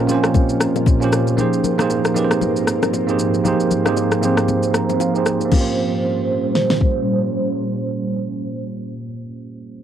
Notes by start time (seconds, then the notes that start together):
Already playing: A#2 F3 A#3 C#4 F4 G4 A#4 C5 C#5 D#5
0.07 A#3 C4 F4 G4, low bongo, shaker
0.12 C#4 C5
0.24 cross-stick, shaker
0.34 kick, high bongo, low conga, shaker
0.49 shaker
0.60 cross-stick, shaker
0.76 low bongo, shaker
0.86 kick, high bongo, shaker
1.00 A#3 C#4 F4 G4 C5, shaker
1.12 cross-stick, shaker
1.27 high bongo, shaker
1.37 G#2 A#3 C4 D#4 G4 G#4 A#4 C5, low conga, shaker
1.53 shaker
1.64 low conga, shaker
1.78 A#3 D#4 G4 G#4 C5, cross-stick, low bongo, shaker
1.90 high bongo, shaker
2.05 cross-stick, shaker
2.14 A#3 D#4 G4 G#4 B4, low bongo, shaker
2.25 C5
2.31 cross-stick, shaker
2.41 high bongo, low conga, shaker
2.56 shaker
2.67 cross-stick, shaker
2.83 cross-stick, low bongo, shaker
2.93 high bongo, shaker
3.07 A#3 D#4 G4 G#4, shaker
3.11 C5
3.19 shaker
3.34 high bongo, shaker
3.44 A#3 D#4 G4 G#4 C5, low conga, shaker
3.48 C5
3.60 shaker
3.71 low conga, shaker
3.85 A#3 D#4 G4 G#4 C5, cross-stick, low bongo, shaker
3.97 high bongo, shaker
4.12 cross-stick, shaker
4.21 A#3 D#4 G4 G#4 C5, low bongo, shaker
4.37 cross-stick, shaker
4.48 high bongo, low conga, shaker
4.63 shaker
4.74 A#5, cross-stick, shaker
4.89 low bongo, shaker
5.00 F5, high bongo, shaker
5.14 A#3 D#4 G4 G#4, shaker
5.18 C5
5.26 cross-stick, shaker
5.41 high bongo, shaker
5.45 A#3 C#4
5.51 A#2 G3 C#4 F4 C5, kick, crash, low conga
5.57 G4
5.61 C5
6.55 snare
6.70 snare
6.81 kick